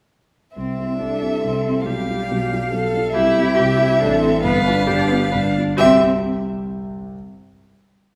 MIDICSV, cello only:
0, 0, Header, 1, 2, 480
1, 0, Start_track
1, 0, Key_signature, 0, "major"
1, 0, Tempo, 431034
1, 630, Time_signature, 3, 2, 24, 8
1, 4949, Tempo, 446429
1, 8935, End_track
2, 0, Start_track
2, 0, Title_t, "Cello"
2, 0, Program_c, 0, 42
2, 612, Note_on_c, 0, 60, 57
2, 1068, Note_off_c, 0, 60, 0
2, 1086, Note_on_c, 0, 62, 55
2, 1573, Note_off_c, 0, 62, 0
2, 1583, Note_on_c, 0, 60, 71
2, 2051, Note_on_c, 0, 55, 64
2, 2068, Note_off_c, 0, 60, 0
2, 3259, Note_off_c, 0, 55, 0
2, 3492, Note_on_c, 0, 64, 103
2, 3955, Note_on_c, 0, 67, 95
2, 3971, Note_off_c, 0, 64, 0
2, 4199, Note_on_c, 0, 64, 91
2, 4216, Note_off_c, 0, 67, 0
2, 4454, Note_on_c, 0, 62, 105
2, 4471, Note_off_c, 0, 64, 0
2, 4690, Note_off_c, 0, 62, 0
2, 4697, Note_on_c, 0, 60, 78
2, 4915, Note_off_c, 0, 60, 0
2, 4921, Note_on_c, 0, 59, 100
2, 5165, Note_off_c, 0, 59, 0
2, 5170, Note_on_c, 0, 62, 83
2, 5393, Note_off_c, 0, 62, 0
2, 5399, Note_on_c, 0, 62, 101
2, 5635, Note_on_c, 0, 59, 84
2, 5651, Note_off_c, 0, 62, 0
2, 5877, Note_on_c, 0, 62, 85
2, 5893, Note_off_c, 0, 59, 0
2, 6359, Note_off_c, 0, 62, 0
2, 6366, Note_on_c, 0, 60, 97
2, 6646, Note_off_c, 0, 60, 0
2, 8935, End_track
0, 0, End_of_file